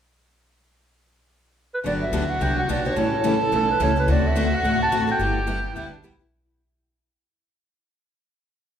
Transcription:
1.74 B4
1.84 G1 D3 F#3 B3 D4 F#4 G4 D5
2.02 E5
2.12 D2 D3 F#3 B3 D4 G4
2.30 F#5
2.40 C2 D3 F#3 B3 D4 G4 G5
2.59 F#5
2.68 B1 D3 F#3 B3 D4 G4 D5
2.85 B3 D4 G4 C#5
2.96 A1 C#3 E3 G3 A3 C#4 E4 G4 A4
3.24 C#3 E3 G3 A3 C#4 E4 G4 A4
3.43 A4
3.52 B1 C#3 E3 G3 A3 C#4 E4 G4 A4
3.71 B4
3.80 C#2 C#3 E3 G3 A3 C#4 E4 G4 A4 C#5
3.96 A3 C#4 G4 B4
4.07 D2 D3 A3 C4 F#4 A4 D5
4.27 E5
4.36 D3 A3 C4 F#4 A4
4.55 F#5
4.63 A1 D3 A3 C4 F#4 A4
4.83 A5
4.92 D3 A3 C4 F#4 A4
5.07 C4 F#4 A4
5.12 G5
5.19 G1 G3 B3 E4 G4
5.47 G3 B3 E4 G4
5.76 D2 G3 B3 E4 G4
5.92 D4
6.04 G3 B3 E4 G4
6.19 B3 E4 G4

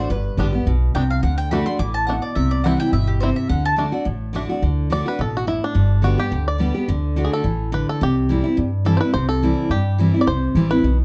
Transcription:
0.00 D4
0.09 G1 G2 B4
0.37 A1 D3 G3 B3 D4 G4
0.53 B3 G4
0.66 B1 B2
0.95 C2 C3 G3 B3 D4 G5
1.10 F5
1.23 D2 D3 F#5
1.38 G5
1.51 D3 A3 D4 F#4 B5
1.66 D4 F#4 C6
1.79 A1 E3 D6
1.94 A5
2.07 B2 A3 D4 F#5
2.22 D5
2.35 C2 C3 E5
2.51 D5
2.64 E3 G3 C4 E4 F#5
2.80 C4 E4 G5
2.93 G1 B2 E5
3.07 G4
3.20 C3 G3 C4 E4 C5
3.36 E5
3.49 D2 D3 F#5
3.65 A5
3.76 D3 A3 D4 F#4
3.92 D4 F#4
4.05 A1 A2
4.33 D3 A3 D4 F#4
4.49 D4 F#4
4.62 D2 D3
4.90 D3 A3 D4 F#4 D5
5.05 D4 F#4 B4
5.19 A1 B2 A4
5.37 F#4
5.47 A2 E4
5.64 D4
5.75 G1 G2
6.02 D3 G3 B3 F#4 G4
6.18 B3 G4
6.32 D2 D3
6.48 D5
6.58 D3 G3 B3 G4
6.74 B3 G4
6.88 D2 D3
7.16 D3 A3 D4 F#4
7.25 G#4
7.33 A4
7.44 A1 E3
7.72 D3 B4
7.89 A4
8.01 C2 C3 G4
8.29 E3 G3 C4 E4
8.44 C4 E4
8.57 G2
8.85 E3 G3 C4 E4 A4
8.97 E4 B4 C5
9.02 C4
9.14 C2 C3 C5
9.29 A4
9.42 E3 G3 C4 E4
9.70 G2 G4
9.98 E3 G3 C4 E4
10.14 C4 E4
10.21 D5
10.27 C2 C3 C5
10.55 A1 E3 G3 C4 E4
10.70 C4 E4 B4
10.83 B1 B2

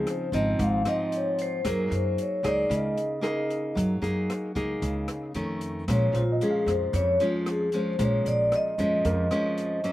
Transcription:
Already playing: C#3 F3 C4 D#4 G#4
0.07 C5, cross-stick, closed hi-hat
0.32 G#1 F3 C4 D#4 D#5, closed hi-hat
0.59 G#1 G#2 F5, kick, closed hi-hat
0.85 F3 C4 D#4 D#5, cross-stick, closed hi-hat
1.12 closed hi-hat
1.17 C#5
1.39 C5, closed hi-hat
1.65 F#2 F#3 A#3 D#4 G#4 A#4, kick, cross-stick, closed hi-hat
1.91 F#2 C5, closed hi-hat
2.18 C#5, closed hi-hat
2.43 C#2 A#3 D#4 G#4 D5, cross-stick, closed hi-hat
2.69 C#2 C#3, kick, closed hi-hat
2.74 D#5
2.98 closed hi-hat
3.21 A#3 D#4 G#4 A#4, cross-stick, closed hi-hat
3.50 closed hi-hat
3.75 F#2 F#3, kick, closed hi-hat
4.02 F#2 A#3 D#4 G#4, closed hi-hat
4.30 cross-stick, closed hi-hat
4.55 C#2 A#3 D#4 G#4, kick, closed hi-hat
4.82 C#2 C#3, kick, closed hi-hat
5.08 cross-stick, closed hi-hat
5.35 F2 D#3 A3 C#4, closed hi-hat
5.61 closed hi-hat
5.88 A#1 A#2 F3 G#3 C#4 C#5, kick, cross-stick, closed hi-hat
6.13 A#1 F4 C5, closed hi-hat
6.32 D#5
6.41 F3 G#3 C#4 G#4, closed hi-hat
6.50 F5
6.66 F2 C5, cross-stick, closed hi-hat
6.93 F2 C#5, kick, closed hi-hat
7.20 F3 G#3 C#4 F4, closed hi-hat
7.46 G#4, cross-stick, closed hi-hat
7.72 F3 G#3 C#4 C5, closed hi-hat
7.99 A#1 A#2 F3 G#3 C#4, kick, closed hi-hat
8.03 C#5
8.25 A#1 D5, closed hi-hat
8.52 D#5, cross-stick, closed hi-hat
8.78 F2 F3 G#3 C#4 D#5, closed hi-hat
9.04 F2 A#4, kick, closed hi-hat
9.31 F3 G#3 C#4, cross-stick, closed hi-hat
9.58 closed hi-hat
9.84 F#3 A#3 C#4, closed hi-hat

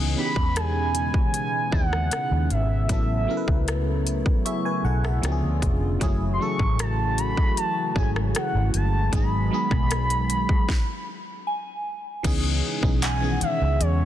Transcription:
Already playing: C#2 B2 C#3 E3 G#3 B3 C#4 D#4 G#4
0.16 E3 B3 C#4 D#4 G4 B5
0.26 G#4
0.36 E2, kick
0.56 G#5 B5, cross-stick, closed hi-hat
0.95 closed hi-hat
1.14 kick
1.34 G#5, closed hi-hat
1.71 D#2 B3 C#4 D#4 E4 G#4 F#5, kick
1.93 cross-stick
2.11 cross-stick, closed hi-hat
2.31 D#2
2.50 G#1 E5, closed hi-hat
2.88 A1 F#3 A3 B3 C#4 E4 A4, kick, closed hi-hat
3.27 F#3 B3 C#4 E4 A#4
3.37 B4
3.48 C#2, kick
3.68 cross-stick, closed hi-hat
4.07 closed hi-hat
4.26 kick
4.45 G#4 E5 C#6, closed hi-hat
4.65 B4 G#5
4.84 B1 A4 F#5
5.04 G#4 E5, cross-stick
5.22 C#2 C#3 D3 F3 B3 C#4 D4 F4 G4, cross-stick, closed hi-hat
5.32 G#4
5.43 D2
5.62 F1, kick, closed hi-hat
6.00 F#1 E3 F#3 A3 C#4 E4 F#4 G#4, kick, closed hi-hat
6.33 C6
6.39 F#3 A3 C#4 E4 A4 C#6
6.59 A1, kick
6.79 A5, cross-stick, closed hi-hat
7.18 B5, closed hi-hat
7.37 kick
7.57 A5, closed hi-hat
7.95 G#1 F#3 G#3 C#4 E4 G#4 G#5, kick
8.02 A3
8.16 cross-stick
8.35 F#5, cross-stick, closed hi-hat
8.54 G#1
8.74 G1 A5, closed hi-hat
9.12 G#1 D#3 F#3 G#3 B3 D#4 G#4 B5, kick, closed hi-hat
9.51 F#3 G#3 B3 D#4 G#4
9.71 B1, kick, cross-stick
9.91 cross-stick, closed hi-hat
10.10 closed hi-hat
10.30 closed hi-hat
10.49 kick
10.69 kick, snare
11.47 G#5
12.23 C#2 B2 C#3 E3 G#3 B3 C#4 D#4 G#4, kick, closed hi-hat, crash
12.82 B1 E3 B3 C#4 D#4 G#4, kick
13.02 F#5 G#5, clap, closed hi-hat
13.21 D#3 E3 B3 C#4 G#4
13.41 E5, muted fingered electric bass stroke, closed hi-hat
13.61 C#2
13.81 E2 C#5, closed hi-hat

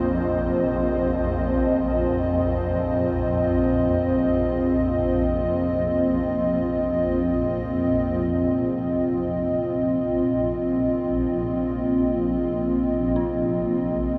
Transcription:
Already playing: A#1 F2 C4 F4 C5 D#5
8.29 A#1
11.33 A#3
13.16 C4

